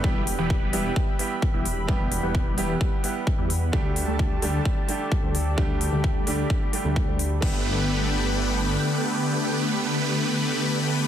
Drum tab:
CC |--------|--------|--------|--------|
HH |-o-o-o-o|-o-o-o-o|-o-o-o-o|-o-o-o-o|
BD |o-o-o-o-|o-o-o-o-|o-o-o-o-|o-o-o-o-|

CC |x-------|--------|
HH |--------|--------|
BD |o-------|--------|